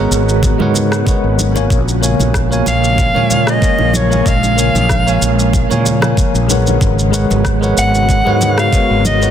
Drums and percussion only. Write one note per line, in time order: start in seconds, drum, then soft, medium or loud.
0.12 shaker medium
0.29 shaker soft
0.43 kick loud
0.43 muted conga medium
0.43 shaker soft
0.59 high conga medium
0.59 low conga medium
0.74 low conga medium
0.74 shaker medium
0.92 cross-stick medium
0.92 shaker soft
1.07 kick loud
1.07 muted conga medium
1.07 shaker soft
1.39 high conga medium
1.39 shaker medium
1.56 muted conga medium
1.56 low conga medium
1.56 shaker soft
1.70 kick loud
1.70 shaker soft
1.88 shaker soft
2.03 shaker medium
2.20 muted conga soft
2.20 high conga medium
2.20 shaker soft
2.34 kick loud
2.34 cross-stick medium
2.34 shaker soft
2.52 shaker soft
2.66 muted conga medium
2.66 shaker medium
2.84 shaker soft
2.98 kick loud
2.98 shaker soft
3.15 high conga medium
3.15 low conga medium
3.30 muted conga soft
3.30 low conga medium
3.30 shaker medium
3.47 cross-stick medium
3.47 shaker soft
3.62 kick loud
3.62 shaker soft
3.79 muted conga medium
3.94 high conga medium
3.94 shaker medium
4.12 low conga medium
4.12 shaker soft
4.26 kick loud
4.26 shaker soft
4.43 muted conga soft
4.43 shaker soft
4.59 shaker medium
4.75 high conga loud
4.75 shaker soft
4.89 kick loud
4.89 cross-stick medium
4.89 muted conga medium
4.89 shaker soft
5.08 shaker soft
5.22 shaker medium
5.39 shaker soft
5.53 kick loud
5.53 muted conga soft
5.53 shaker soft
5.70 high conga medium
5.70 low conga medium
5.70 shaker soft
5.86 low conga medium
5.86 shaker medium
6.02 cross-stick medium
6.02 muted conga medium
6.02 shaker soft
6.17 kick loud
6.17 shaker soft
6.35 shaker soft
6.50 high conga medium
6.50 shaker medium
6.67 muted conga soft
6.67 low conga medium
6.67 shaker soft
6.81 kick loud
6.81 muted conga soft
6.81 shaker soft
6.99 shaker soft
7.14 shaker medium
7.30 muted conga medium
7.30 high conga medium
7.30 shaker soft
7.45 kick loud
7.45 cross-stick medium
7.45 shaker soft
7.63 shaker soft
7.78 shaker medium
7.94 muted conga medium
7.94 shaker soft
8.09 kick loud
8.09 shaker soft
8.27 high conga medium
8.27 low conga medium
8.41 muted conga medium
8.41 low conga medium
8.41 shaker medium
8.58 cross-stick medium
8.58 shaker soft
8.73 kick loud
8.73 shaker soft
9.05 muted conga soft
9.05 high conga loud
9.05 shaker medium
9.21 low conga medium
9.21 shaker soft